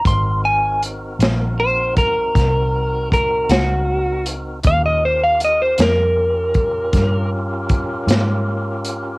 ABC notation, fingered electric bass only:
X:1
M:12/8
L:1/8
Q:3/8=52
K:Ebdor
V:1 name="Fingered electric bass" clef=bass
A,,,3 B,,,3 C,,3 D,,3 | E,,3 F,,3 =G,,3 A,,3 |]